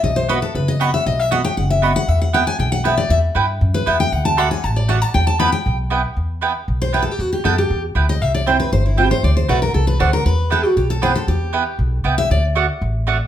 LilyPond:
<<
  \new Staff \with { instrumentName = "Steel-string acoustic guitar" } { \time 4/4 \key e \minor \tempo 4 = 235 dis''8 c''8 b'8 a'8 b'8 dis''8 fis''8 e''8 | dis''8 e''8 fis''8 g''8 fis''8 e''8 dis''8 fis''8 | e''8 fis''8 g''8 gis''8 g''8 fis''8 e''8 d''8 | e''8 r2 b'8 e''8 g''8 |
fis''8 a''8 b''8 gis''8 a''8 d''8 fis''8 a''8 | g''8 a''8 b''8 g''4 r4. | r2 r8 c''8 \tuplet 3/2 { b'8 a'8 g'8 } | fis'8 g'8 a'8 g'4 r4 dis''8 |
e''8 d''8 c''8 b'8 c''8 e'8 g'8 c''8 | d''8 c''8 b'8 ais'8 a'8 b'8 c''8 ais'8 | b'4 a'8 fis'8 g'8 a'8 c''8 a'8 | g'2 r4. e''8 |
d''8 r2. r8 | }
  \new Staff \with { instrumentName = "Mandolin" } { \time 4/4 \key e \minor r4 <b fis' dis'' b''>8 r4. <b fis' dis'' b''>8 r8 | r4 <b fis' dis'' b''>8 r4. <b fis' dis'' b''>8 r8 | r4 <b e' b' g''>8 r4. <b e' b' g''>8 r8 | r4 <b e' b' g''>8 r4. <b e' b' g''>8 r8 |
r4 <a fis' d'' fis''>8 r4. <a fis' d'' fis''>8 r8 | r4 <b e' b' g''>8 r4. <b e' b' g''>8 r8 | r4 <b e' b' g''>8 r4. <b e' b' g''>8 r8 | r4 <b e' b' g''>8 r4. <b e' b' g''>8 r8 |
r4 <c' e' c'' g''>8 r4. <c' e' c'' g''>8 r8 | r4 <a fis' d'' fis''>8 r4. <a fis' d'' fis''>8 r8 | r4 <b e' b' g''>8 r4. <b e' b' g''>8 r8 | r4 <b e' b' g''>8 r4. <b e' b' g''>8 r8 |
r4 <a fis' d'' fis''>8 r4. <a fis' d'' fis''>8 r8 | }
  \new Staff \with { instrumentName = "Upright bass" } { \clef bass \time 4/4 \key e \minor b,,2 fis,,2 | b,,2 fis,,2 | e,2 b,,2 | e,4 g,4 fis,4 e,4 |
d,2 a,,2 | e,2 b,,2 | e,2 b,,2 | e,4 fis,4 e,4 d,4 |
c,2 g,,2 | d,4 b,,4 c,4 d,4 | e,2 b,,2 | e,2 b,,4 c,4 |
d,2 a,,2 | }
>>